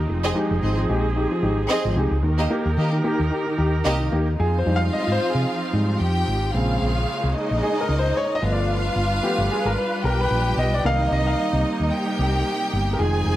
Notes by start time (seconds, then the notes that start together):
Already playing: D#4
0.09 F1 F3 C4 G#4
0.23 C4 D#4 G4 G#4 D#5
0.35 G#3 D#4 G4
0.51 F1
0.62 G#1 C4 D#4 G4 G#4 D#5
0.78 F3
0.89 A#1 G#3 D#4 G4
1.16 D#4 G4
1.32 F3
1.43 G#1 D#4 G4
1.69 C4 D#4 G4 G#4 D#5
1.85 G#1 F3
1.96 C2 G#3 D#4 G4
2.11 C#2
2.23 D#2 D#3 D#4 G4 A#4
2.38 A#3 D#4 G4 D#5
2.50 A#3 D#4 G4
2.66 D#2
2.77 D#3 A#3 D#4 G4 D#5
2.92 D#3
3.04 A#3 D#4 G4
3.20 D#2
3.31 D#4 G4
3.47 D#3
3.58 D#2 D#4 G4
3.85 C2 A#3 D#4 G4 D#5
4.00 D#3
4.12 D#2 A#3 D#4 G4
4.38 F2 F3 C4 D#4 F4 G#4 F5
4.59 C5
4.66 F2 G3 G#3 D#4
4.76 F5
4.93 D#5
5.08 G#2
5.12 C5
5.30 G#4
5.35 C3
5.73 G#2 G3 G#3 D#4
5.99 F2 G4 G5
6.28 G#1
6.53 A#1 C#3 G#3 A#3 C4 F4 F5
6.82 A#1
7.24 C2
7.34 D#4 D#5
7.51 A#1
7.63 G#4
7.81 A#4
7.89 C#2
7.99 C5
8.17 C#5
8.35 D#5
8.41 G1 F3 G3 A3 B3 D4 F4 B4 D#5 F5
8.52 D5
8.96 G1
9.23 F3 A3 B3 G4
9.38 G1
9.51 G#4
9.65 G#1 A#4
9.78 B4
10.03 B1 G4 A#4 G5
10.21 B4
10.31 A#1
10.57 B1 D#5
10.74 D5
10.84 C2 C3 D#3 G3 A#3 D#4 D#5 F5
11.11 C2 D#5
11.27 F5
11.53 C2
11.80 D#2
11.91 G4 G5
12.19 C2
12.73 G1
12.93 A#4
12.99 F1 D#3 F3 G#3 C4 D#4 G#4 G#5
13.26 F1